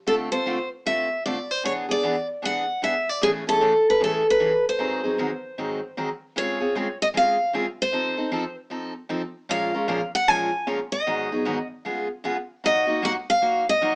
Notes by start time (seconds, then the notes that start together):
0.07 D3 A3 C4 F4 A4
0.31 C4 F4 A4 C5
0.46 D3 A3 C4 F4 A4
0.86 D3 A3 C4 F4 A4 E5
1.26 D3 A3 C4 F4 A4 D5
1.51 C5
1.63 E3 B3 D4 G#4 C#5
1.89 B3 D4 G#4 D5
2.03 E3 B3 D4 G#4
2.42 E3 B3 D4 G#4 F#5
2.82 E3 B3 D4 G#4 E5
3.09 D5
3.22 A2 C#3 E3 A3 C#4 G#4
3.47 E3 A3 C#4 G#4 A4
3.61 A2 C#3 E3 A3 C#4 G#4
3.90 B4
4.00 A2 C#3 E3 A3 C#4 G#4
4.04 A4
4.30 B4
4.39 A2 C#3 E3 A3 C#4 G#4
4.69 C5
4.79 G#2 D#3 F#3 C4 D#4 G#4
5.03 F#3 C4 D#4 G#4
5.18 G#2 D#3 F#3 C4 D#4 G#4
5.58 G#2 D#3 F#3 C4 D#4 G#4
5.97 G#2 D#3 F#3 C4 D#4 G#4
6.36 C#3 G#3 C4 F4 G#4 C#5
6.60 C4 F4 G#4
6.75 C#3 G#3 C4 F4 G#4
7.02 D#5
7.14 C#3 G#3 C4 F4 G#4 F5
7.53 C#3 G#3 C4 F4 G#4
7.82 C5
7.92 F3 C4 D#4 A4
8.17 C4 D#4 A4
8.32 F3 C4 D#4 A4
8.70 F3 C4 D#4 A4
9.09 F3 C4 D#4 A4
9.49 A#2 F3 G#3 C#4 F4 A#4 F5
9.74 G#3 C#4 F4 A#4
9.88 A#2 F3 G#3 C#4 F4 A#4
10.15 F#5
10.27 A#2 F3 G#3 C#4 F4 A#4 G#5
10.67 A#2 F3 G#3 C#4 F4 A#4
10.92 D#5
11.07 G#2 D#3 F#3 B3 D#4 G#4
11.32 F#3 B3 D#4 G#4
11.45 G#2 D#3 F#3 B3 D#4 G#4
11.85 C#3 G#3 B3 F4 G#4
12.24 C#3 G#3 B3 F4 G#4
12.64 F#3 A#3 D#4 F#4 D#5
12.87 A#3 D#4 F#4
13.02 F#3 A#3 D#4 F#4 F#5
13.30 F5
13.42 F#3 A#3 D#4 F#4
13.69 D#5
13.81 F#3 A#3 D#4 F#4